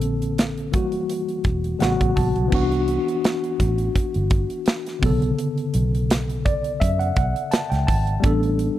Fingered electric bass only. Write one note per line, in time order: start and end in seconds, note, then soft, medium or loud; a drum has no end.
0.00 0.74 A#1 medium
0.74 1.02 F#1 medium
1.45 1.74 E1 medium
1.81 1.97 A1 medium
2.01 2.14 A1 medium
2.17 2.32 A#1 medium
2.37 2.50 B1 medium
2.52 2.96 C2 medium
3.60 3.88 A1 medium
3.96 muted fingered electric bass stroke soft
4.16 4.44 G1 medium
5.02 5.31 B1 medium
5.75 6.78 B1 loud
6.82 7.10 F#2 loud
7.17 7.32 B1 medium
7.72 7.85 C#2 medium
7.88 8.17 G#1 medium
8.24 8.68 A1 loud